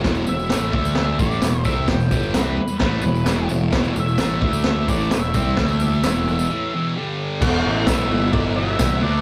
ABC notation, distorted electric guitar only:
X:1
M:4/4
L:1/8
Q:1/4=130
K:Em
V:1 name="Distorted electric guitar" clef=bass
[E,,B,,E,] [E,,B,,] [A,,E,A,] [D,A,D]2 [A,,E,A,] [E,,B,,] [C,G,C] | [E,,B,,] [G,,D,G,] [C,G,C] z [A,,E,A,] [E,,B,,] [E,,B,,E,] [E,,B,,] | [E,,B,,E,] [E,,B,,] [A,,E,A,] [D,A,D]2 [A,,E,A,] [E,,B,,] [C,G,C] | [D,A,D]2 [E,,B,,E,]2 [A,,E,A,] [E,,B,,E,] [G,,D,G,]2 |
[E,,B,,E,] [B,,E,] [E,,B,,E,] [B,,E,]2 [B,,E,] [E,,B,,E,] [D,A,D] |]